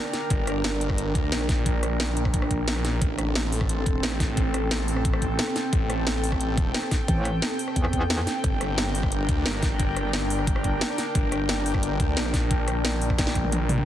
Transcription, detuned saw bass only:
0, 0, Header, 1, 2, 480
1, 0, Start_track
1, 0, Tempo, 338983
1, 430, Time_signature, 4, 2, 24, 8
1, 19612, End_track
2, 0, Start_track
2, 0, Title_t, "Detuned saw bass"
2, 0, Program_c, 0, 39
2, 430, Note_on_c, 0, 31, 96
2, 1611, Note_off_c, 0, 31, 0
2, 1630, Note_on_c, 0, 38, 100
2, 1851, Note_off_c, 0, 38, 0
2, 1870, Note_on_c, 0, 34, 98
2, 3771, Note_off_c, 0, 34, 0
2, 3790, Note_on_c, 0, 34, 98
2, 4251, Note_off_c, 0, 34, 0
2, 4270, Note_on_c, 0, 33, 96
2, 5451, Note_off_c, 0, 33, 0
2, 5470, Note_on_c, 0, 28, 94
2, 5691, Note_off_c, 0, 28, 0
2, 5710, Note_on_c, 0, 33, 99
2, 7611, Note_off_c, 0, 33, 0
2, 8111, Note_on_c, 0, 33, 98
2, 9291, Note_off_c, 0, 33, 0
2, 11950, Note_on_c, 0, 31, 100
2, 13131, Note_off_c, 0, 31, 0
2, 13150, Note_on_c, 0, 38, 96
2, 13371, Note_off_c, 0, 38, 0
2, 13390, Note_on_c, 0, 31, 100
2, 15291, Note_off_c, 0, 31, 0
2, 15790, Note_on_c, 0, 31, 96
2, 16971, Note_off_c, 0, 31, 0
2, 16990, Note_on_c, 0, 38, 98
2, 17211, Note_off_c, 0, 38, 0
2, 17230, Note_on_c, 0, 34, 100
2, 19131, Note_off_c, 0, 34, 0
2, 19150, Note_on_c, 0, 34, 101
2, 19611, Note_off_c, 0, 34, 0
2, 19612, End_track
0, 0, End_of_file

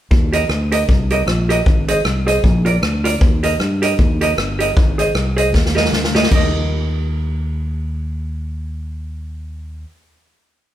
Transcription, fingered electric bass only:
0, 0, Header, 1, 2, 480
1, 0, Start_track
1, 0, Key_signature, -3, "major"
1, 0, Tempo, 386598
1, 144, Time_signature, 4, 2, 24, 8
1, 13343, End_track
2, 0, Start_track
2, 0, Title_t, "Fingered electric bass"
2, 0, Program_c, 0, 33
2, 134, Note_on_c, 0, 39, 97
2, 546, Note_off_c, 0, 39, 0
2, 611, Note_on_c, 0, 38, 96
2, 1025, Note_off_c, 0, 38, 0
2, 1100, Note_on_c, 0, 36, 89
2, 1510, Note_off_c, 0, 36, 0
2, 1568, Note_on_c, 0, 34, 83
2, 1984, Note_off_c, 0, 34, 0
2, 2063, Note_on_c, 0, 32, 94
2, 2474, Note_off_c, 0, 32, 0
2, 2541, Note_on_c, 0, 36, 86
2, 2954, Note_off_c, 0, 36, 0
2, 3027, Note_on_c, 0, 34, 106
2, 3437, Note_off_c, 0, 34, 0
2, 3499, Note_on_c, 0, 38, 92
2, 3914, Note_off_c, 0, 38, 0
2, 3990, Note_on_c, 0, 39, 102
2, 4400, Note_off_c, 0, 39, 0
2, 4466, Note_on_c, 0, 43, 86
2, 4879, Note_off_c, 0, 43, 0
2, 4952, Note_on_c, 0, 39, 100
2, 5363, Note_off_c, 0, 39, 0
2, 5433, Note_on_c, 0, 31, 96
2, 5844, Note_off_c, 0, 31, 0
2, 5920, Note_on_c, 0, 32, 92
2, 6329, Note_off_c, 0, 32, 0
2, 6393, Note_on_c, 0, 36, 89
2, 6876, Note_off_c, 0, 36, 0
2, 6876, Note_on_c, 0, 39, 109
2, 7287, Note_off_c, 0, 39, 0
2, 7353, Note_on_c, 0, 38, 82
2, 7765, Note_off_c, 0, 38, 0
2, 7838, Note_on_c, 0, 39, 80
2, 12214, Note_off_c, 0, 39, 0
2, 13343, End_track
0, 0, End_of_file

